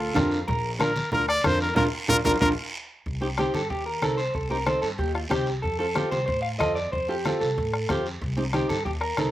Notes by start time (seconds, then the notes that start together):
Already playing: F4
0.00 A4
0.14 F2 D4 F4 G4 A#4, bombo low, bombo rim, high conga, low conga, short guiro
0.30 F4, short guiro
0.48 A#1 A#4, bombo low, low conga, long guiro
0.79 D4 F4 A#4, bombo rim, high conga, short guiro
0.96 high conga, short guiro
1.12 D2 D4 F4 A#4, bombo low, low conga, long guiro
1.28 D5, bombo rim
1.44 F2 D4 F4 A#4 C5, bombo low, bombo rim, high conga, low conga, short guiro
1.60 A#4, short guiro
1.75 A#1 D4 F4 A#4, bombo low, low conga, long guiro
2.08 A#1 D4 F4 A#4, bombo low, low conga, long guiro
2.24 A#1 D4 F4 A#4, bombo low, low conga, long guiro
2.40 A#1 D4 F4 A#4, bombo low, low conga, long guiro
3.06 C2, bombo low, long guiro
3.21 C4 D#4 G4
3.38 C4 D#4 G4, bombo rim, high conga, short guiro
3.54 G2 A4, high conga, short guiro
3.70 D#2 G4, bombo low, long guiro
3.86 A#4
4.02 C2 C4 D#4 A4, bombo rim, high conga, short guiro
4.17 C5, short guiro
4.34 C2 A4, bombo low, long guiro
4.50 C4 D#4 G4 A#4
4.66 C4 D#4 A4 C5, bombo rim, high conga, short guiro
4.82 G2 A4, short guiro
4.98 D#2 G4, bombo low, long guiro
5.15 F4, bombo rim
5.29 C2 C4 D#4 G4, bombo low, bombo rim, high conga, short guiro
5.46 short guiro
5.62 F2 A4, bombo low, long guiro
5.79 C4 F4 A4
5.95 C4 F4 G4, bombo rim, high conga, short guiro
6.11 C2 C5, high conga, short guiro
6.26 A2 C5, bombo low, long guiro
6.42 F5
6.59 F2 C4 F4 A4 D#5, bombo low, bombo rim, high conga, short guiro
6.75 D5, short guiro
6.92 F2 C5, bombo low, long guiro
7.08 C4 F4 G4 A4
7.25 C4 F4 A4, bombo rim, high conga, short guiro
7.40 C2 A4, short guiro
7.58 A2, bombo low, long guiro
7.74 bombo rim
7.89 F2 C4 F4 G4, bombo low, bombo rim, high conga, short guiro
8.06 short guiro
8.22 C2, bombo low, long guiro
8.37 C4 D#4 G4
8.53 C4 D#4 G4, bombo rim, high conga, short guiro
8.69 G2 A4, high conga, short guiro
8.85 D#2 G4, bombo low, long guiro
9.01 A#4, bombo rim
9.17 C2 C4 D#4 A4, bombo rim, high conga, short guiro